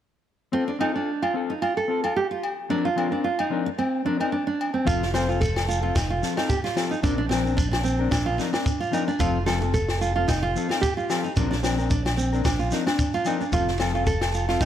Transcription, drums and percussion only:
0.81 low agogo medium
1.23 low agogo medium
1.62 low agogo medium
2.04 low agogo medium
2.43 low agogo medium
2.98 low agogo medium
3.39 low agogo medium
3.79 low agogo medium
4.21 low agogo medium
4.61 low agogo medium
4.87 kick medium
4.87 shekere medium
5.02 snare soft
5.14 snare medium
5.14 low agogo medium
5.14 shekere medium
5.30 shekere soft
5.42 kick medium
5.42 shekere medium
5.56 snare medium
5.56 low agogo medium
5.70 shekere medium
5.96 kick medium
5.96 snare medium
5.96 low agogo medium
5.96 shekere medium
6.23 snare soft
6.23 shekere medium
6.37 snare medium
6.37 low agogo medium
6.50 kick medium
6.50 shekere medium
6.65 snare soft
6.65 shekere soft
6.77 snare medium
6.77 low agogo medium
6.77 shekere medium
6.92 shekere soft
7.04 kick medium
7.04 shekere medium
7.31 snare medium
7.31 low agogo medium
7.31 shekere medium
7.47 shekere soft
7.58 kick medium
7.58 shekere medium
7.73 snare medium
7.73 low agogo medium
7.85 shekere medium
8.12 kick medium
8.12 snare medium
8.12 low agogo medium
8.12 shekere medium
8.39 snare soft
8.39 shekere medium
8.54 snare medium
8.54 low agogo medium
8.66 kick medium
8.66 shekere medium
8.81 shekere soft
8.93 low agogo medium
8.93 shekere medium
9.08 shekere soft
9.20 kick medium
9.20 shekere medium
9.47 snare medium
9.47 low agogo medium
9.47 shekere medium
9.62 shekere soft
9.74 kick medium
9.74 shekere medium
9.88 snare medium
9.88 low agogo medium
10.02 shekere medium
10.29 kick medium
10.29 snare medium
10.29 low agogo medium
10.29 shekere medium
10.56 shekere medium
10.70 snare medium
10.70 low agogo medium
10.83 kick medium
10.83 shekere medium
10.98 shekere soft
11.10 snare medium
11.10 low agogo medium
11.10 shekere medium
11.25 shekere soft
11.36 kick medium
11.36 shekere medium
11.52 snare soft
11.52 shekere soft
11.64 snare medium
11.64 low agogo medium
11.64 shekere medium
11.78 shekere soft
11.90 kick medium
11.90 shekere medium
12.06 snare medium
12.06 low agogo medium
12.06 shekere soft
12.18 shekere medium
12.33 shekere soft
12.45 kick medium
12.45 snare medium
12.45 low agogo medium
12.45 shekere medium
12.60 shekere soft
12.71 snare soft
12.71 shekere medium
12.87 snare medium
12.87 low agogo medium
12.87 shekere soft
12.99 kick medium
12.99 shekere medium
13.14 shekere soft
13.25 low agogo medium
13.25 shekere medium
13.41 shekere soft
13.53 kick medium
13.53 shekere medium
13.68 snare soft
13.80 snare medium
13.80 low agogo medium
13.80 shekere medium
13.95 shekere soft
14.07 kick medium
14.07 shekere medium
14.21 snare medium
14.21 low agogo medium
14.34 shekere medium
14.49 snare soft
14.61 kick medium
14.61 snare medium
14.61 low agogo medium
14.61 shekere medium

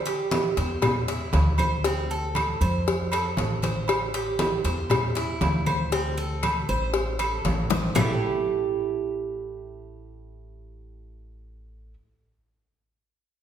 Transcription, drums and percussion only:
0.07 cowbell medium
0.07 high conga soft
0.31 cowbell medium
0.31 high conga loud
0.31 low timbale medium
0.31 low agogo medium
0.57 cowbell medium
0.57 high conga soft
0.57 low agogo medium
0.82 cowbell loud
0.82 high conga soft
0.82 low conga medium
0.82 low agogo loud
0.82 claves medium
1.08 cowbell medium
1.08 high conga soft
1.33 cowbell medium
1.33 high conga medium
1.33 low timbale medium
1.33 low agogo medium
1.58 high conga medium
1.58 low agogo loud
1.58 claves medium
1.84 cowbell loud
1.84 high conga soft
2.10 high conga soft
2.35 cowbell medium
2.35 high conga medium
2.35 low timbale medium
2.35 low agogo loud
2.35 claves medium
2.61 high conga soft
2.61 low agogo medium
2.87 cowbell loud
2.87 high conga soft
3.12 cowbell medium
3.12 high conga soft
3.12 low agogo loud
3.12 claves medium
3.37 cowbell medium
3.37 high conga medium
3.37 low timbale medium
3.62 cowbell medium
3.62 high conga medium
3.62 low agogo medium
3.88 cowbell loud
3.88 high conga soft
3.88 low agogo loud
3.88 claves medium
4.14 cowbell medium
4.14 high conga soft
4.39 cowbell medium
4.39 high conga loud
4.39 low timbale medium
4.39 low agogo medium
4.64 cowbell medium
4.64 high conga soft
4.64 low agogo medium
4.90 cowbell loud
4.90 high conga soft
4.90 low conga medium
4.90 low agogo loud
4.90 claves medium
5.16 cowbell medium
5.16 high conga soft
5.41 cowbell medium
5.41 high conga medium
5.41 low timbale medium
5.41 low agogo medium
5.67 high conga medium
5.67 low agogo loud
5.67 claves medium
5.92 cowbell loud
5.92 high conga soft
6.18 high conga soft
6.43 cowbell medium
6.43 high conga medium
6.43 low timbale medium
6.43 low agogo loud
6.43 claves medium
6.69 high conga soft
6.69 low agogo medium
6.94 cowbell loud
6.94 high conga soft
7.19 cowbell medium
7.19 high conga soft
7.19 low agogo loud
7.19 claves medium
7.45 cowbell medium
7.45 high conga medium
7.45 low timbale medium
7.70 cowbell medium
7.70 high bongo loud
7.70 high conga medium
7.70 low agogo medium
7.95 low bongo loud
7.95 low conga loud
7.95 low timbale loud
7.95 claves loud

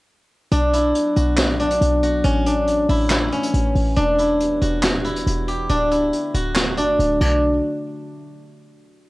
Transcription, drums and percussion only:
0.52 closed hi-hat medium
0.73 closed hi-hat medium
0.95 closed hi-hat medium
1.16 closed hi-hat medium
1.37 snare loud
1.37 clap loud
1.37 closed hi-hat loud
1.60 closed hi-hat soft
1.70 closed hi-hat medium
1.81 closed hi-hat medium
2.03 closed hi-hat medium
2.24 closed hi-hat medium
2.46 closed hi-hat medium
2.67 closed hi-hat medium
2.89 open hi-hat medium
3.10 snare loud
3.10 clap loud
3.10 closed hi-hat loud
3.32 closed hi-hat soft
3.43 closed hi-hat medium
3.54 closed hi-hat medium
3.75 open hi-hat soft
3.97 closed hi-hat medium
4.19 closed hi-hat medium
4.40 closed hi-hat medium
4.62 closed hi-hat medium
4.83 snare loud
4.83 clap loud
4.83 closed hi-hat loud
5.05 closed hi-hat soft
5.16 closed hi-hat medium
5.27 closed hi-hat medium
5.48 closed hi-hat medium
5.70 closed hi-hat medium
5.91 closed hi-hat medium
6.13 closed hi-hat medium
6.34 closed hi-hat medium
6.55 snare loud
6.55 clap medium
6.55 closed hi-hat medium
6.78 closed hi-hat medium
6.99 closed hi-hat medium
7.21 crash medium

